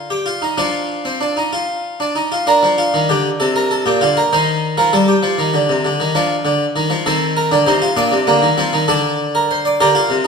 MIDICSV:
0, 0, Header, 1, 2, 480
1, 0, Start_track
1, 0, Key_signature, -2, "major"
1, 0, Tempo, 626305
1, 1891, Time_signature, 12, 3, 24, 8
1, 2840, Tempo, 609756
1, 8008, End_track
2, 0, Start_track
2, 0, Title_t, "Harpsichord"
2, 0, Program_c, 0, 6
2, 0, Note_on_c, 0, 50, 71
2, 0, Note_on_c, 0, 70, 72
2, 79, Note_on_c, 0, 67, 69
2, 197, Note_on_c, 0, 65, 64
2, 198, Note_off_c, 0, 67, 0
2, 317, Note_off_c, 0, 65, 0
2, 321, Note_on_c, 0, 63, 63
2, 413, Note_off_c, 0, 50, 0
2, 414, Note_off_c, 0, 70, 0
2, 439, Note_off_c, 0, 63, 0
2, 441, Note_on_c, 0, 62, 67
2, 441, Note_on_c, 0, 65, 61
2, 442, Note_on_c, 0, 53, 64
2, 793, Note_off_c, 0, 62, 0
2, 806, Note_on_c, 0, 60, 60
2, 922, Note_off_c, 0, 60, 0
2, 924, Note_on_c, 0, 62, 62
2, 1042, Note_off_c, 0, 62, 0
2, 1048, Note_on_c, 0, 63, 62
2, 1161, Note_off_c, 0, 65, 0
2, 1165, Note_off_c, 0, 63, 0
2, 1170, Note_on_c, 0, 65, 67
2, 1521, Note_off_c, 0, 65, 0
2, 1534, Note_on_c, 0, 62, 58
2, 1620, Note_off_c, 0, 53, 0
2, 1649, Note_off_c, 0, 62, 0
2, 1651, Note_on_c, 0, 63, 58
2, 1768, Note_off_c, 0, 63, 0
2, 1776, Note_on_c, 0, 65, 62
2, 1889, Note_off_c, 0, 65, 0
2, 1892, Note_on_c, 0, 62, 77
2, 1894, Note_on_c, 0, 70, 82
2, 2015, Note_on_c, 0, 53, 86
2, 2041, Note_off_c, 0, 70, 0
2, 2131, Note_on_c, 0, 65, 73
2, 2161, Note_off_c, 0, 53, 0
2, 2253, Note_on_c, 0, 51, 90
2, 2277, Note_off_c, 0, 65, 0
2, 2365, Note_off_c, 0, 51, 0
2, 2370, Note_on_c, 0, 50, 99
2, 2371, Note_on_c, 0, 67, 74
2, 2516, Note_off_c, 0, 50, 0
2, 2516, Note_off_c, 0, 67, 0
2, 2604, Note_on_c, 0, 69, 74
2, 2607, Note_on_c, 0, 48, 86
2, 2718, Note_off_c, 0, 69, 0
2, 2727, Note_on_c, 0, 70, 72
2, 2838, Note_off_c, 0, 70, 0
2, 2842, Note_on_c, 0, 69, 71
2, 2951, Note_off_c, 0, 48, 0
2, 2958, Note_off_c, 0, 69, 0
2, 2960, Note_on_c, 0, 46, 91
2, 2961, Note_on_c, 0, 67, 71
2, 3077, Note_off_c, 0, 46, 0
2, 3078, Note_off_c, 0, 67, 0
2, 3081, Note_on_c, 0, 65, 69
2, 3082, Note_on_c, 0, 50, 78
2, 3199, Note_off_c, 0, 65, 0
2, 3206, Note_on_c, 0, 70, 70
2, 3231, Note_off_c, 0, 50, 0
2, 3292, Note_off_c, 0, 62, 0
2, 3321, Note_off_c, 0, 70, 0
2, 3330, Note_on_c, 0, 63, 76
2, 3330, Note_on_c, 0, 72, 73
2, 3331, Note_on_c, 0, 51, 93
2, 3675, Note_off_c, 0, 72, 0
2, 3676, Note_off_c, 0, 51, 0
2, 3682, Note_on_c, 0, 70, 66
2, 3683, Note_on_c, 0, 53, 83
2, 3798, Note_off_c, 0, 70, 0
2, 3799, Note_off_c, 0, 53, 0
2, 3804, Note_on_c, 0, 69, 65
2, 3805, Note_on_c, 0, 55, 93
2, 3920, Note_off_c, 0, 69, 0
2, 3924, Note_on_c, 0, 67, 77
2, 3954, Note_off_c, 0, 55, 0
2, 4037, Note_on_c, 0, 53, 95
2, 4158, Note_off_c, 0, 53, 0
2, 4161, Note_on_c, 0, 51, 89
2, 4281, Note_off_c, 0, 51, 0
2, 4282, Note_on_c, 0, 50, 82
2, 4401, Note_off_c, 0, 50, 0
2, 4405, Note_on_c, 0, 48, 88
2, 4523, Note_off_c, 0, 48, 0
2, 4524, Note_on_c, 0, 50, 84
2, 4643, Note_off_c, 0, 50, 0
2, 4646, Note_on_c, 0, 51, 87
2, 4740, Note_off_c, 0, 63, 0
2, 4763, Note_off_c, 0, 51, 0
2, 4764, Note_on_c, 0, 53, 100
2, 4765, Note_on_c, 0, 62, 81
2, 4914, Note_off_c, 0, 53, 0
2, 4999, Note_on_c, 0, 50, 94
2, 5149, Note_off_c, 0, 50, 0
2, 5242, Note_on_c, 0, 51, 98
2, 5355, Note_on_c, 0, 53, 91
2, 5360, Note_off_c, 0, 51, 0
2, 5454, Note_off_c, 0, 67, 0
2, 5463, Note_off_c, 0, 62, 0
2, 5477, Note_off_c, 0, 53, 0
2, 5481, Note_on_c, 0, 51, 90
2, 5482, Note_on_c, 0, 69, 77
2, 5483, Note_on_c, 0, 60, 76
2, 5631, Note_off_c, 0, 69, 0
2, 5721, Note_on_c, 0, 70, 75
2, 5831, Note_off_c, 0, 51, 0
2, 5832, Note_off_c, 0, 60, 0
2, 5839, Note_on_c, 0, 50, 98
2, 5839, Note_on_c, 0, 62, 80
2, 5870, Note_off_c, 0, 70, 0
2, 5956, Note_on_c, 0, 72, 69
2, 5957, Note_on_c, 0, 48, 86
2, 5958, Note_off_c, 0, 50, 0
2, 5958, Note_off_c, 0, 62, 0
2, 5958, Note_on_c, 0, 63, 72
2, 6076, Note_on_c, 0, 65, 77
2, 6077, Note_off_c, 0, 63, 0
2, 6108, Note_off_c, 0, 48, 0
2, 6108, Note_off_c, 0, 72, 0
2, 6193, Note_on_c, 0, 46, 101
2, 6194, Note_on_c, 0, 62, 78
2, 6195, Note_on_c, 0, 74, 81
2, 6196, Note_off_c, 0, 65, 0
2, 6313, Note_on_c, 0, 48, 83
2, 6315, Note_off_c, 0, 46, 0
2, 6346, Note_off_c, 0, 62, 0
2, 6435, Note_off_c, 0, 48, 0
2, 6435, Note_on_c, 0, 58, 81
2, 6436, Note_on_c, 0, 50, 90
2, 6554, Note_on_c, 0, 51, 84
2, 6557, Note_off_c, 0, 50, 0
2, 6586, Note_off_c, 0, 58, 0
2, 6674, Note_on_c, 0, 53, 96
2, 6675, Note_off_c, 0, 51, 0
2, 6675, Note_on_c, 0, 60, 75
2, 6795, Note_off_c, 0, 53, 0
2, 6797, Note_on_c, 0, 51, 101
2, 6826, Note_off_c, 0, 60, 0
2, 6898, Note_off_c, 0, 74, 0
2, 6914, Note_on_c, 0, 62, 79
2, 6915, Note_on_c, 0, 50, 101
2, 6915, Note_on_c, 0, 69, 83
2, 6917, Note_off_c, 0, 51, 0
2, 7267, Note_off_c, 0, 69, 0
2, 7282, Note_on_c, 0, 70, 74
2, 7397, Note_off_c, 0, 70, 0
2, 7407, Note_on_c, 0, 72, 74
2, 7519, Note_off_c, 0, 72, 0
2, 7521, Note_on_c, 0, 74, 78
2, 7612, Note_off_c, 0, 50, 0
2, 7612, Note_off_c, 0, 62, 0
2, 7636, Note_off_c, 0, 74, 0
2, 7641, Note_on_c, 0, 67, 98
2, 7641, Note_on_c, 0, 70, 84
2, 7643, Note_on_c, 0, 50, 90
2, 7755, Note_off_c, 0, 67, 0
2, 7755, Note_on_c, 0, 65, 92
2, 7789, Note_off_c, 0, 50, 0
2, 7873, Note_on_c, 0, 48, 82
2, 7904, Note_off_c, 0, 65, 0
2, 8008, Note_off_c, 0, 48, 0
2, 8008, Note_off_c, 0, 70, 0
2, 8008, End_track
0, 0, End_of_file